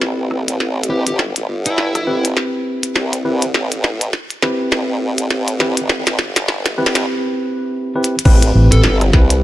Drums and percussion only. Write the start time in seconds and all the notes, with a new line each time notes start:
0.01 snare
0.31 cross-stick
0.48 closed hi-hat
0.60 snare
0.83 closed hi-hat
1.07 closed hi-hat
1.19 snare
1.36 closed hi-hat
1.66 closed hi-hat
1.78 snare
1.95 cross-stick, closed hi-hat
2.25 closed hi-hat
2.37 snare
2.83 closed hi-hat
2.96 snare
3.13 closed hi-hat
3.42 closed hi-hat
3.54 snare
3.72 closed hi-hat
3.84 snare
4.01 closed hi-hat
4.13 snare
4.30 closed hi-hat
4.42 snare
4.72 snare
5.18 closed hi-hat
5.30 snare
5.48 closed hi-hat
5.60 snare
5.77 closed hi-hat
5.89 snare
6.07 snare, closed hi-hat
6.19 snare
6.36 snare, closed hi-hat
6.48 snare
6.66 snare, closed hi-hat
6.86 snare
6.95 snare, closed hi-hat
8.04 closed hi-hat
8.19 closed hi-hat
8.25 kick, crash
8.42 closed hi-hat
8.72 closed hi-hat
8.84 snare
9.01 cross-stick, closed hi-hat
9.13 kick, snare
9.30 closed hi-hat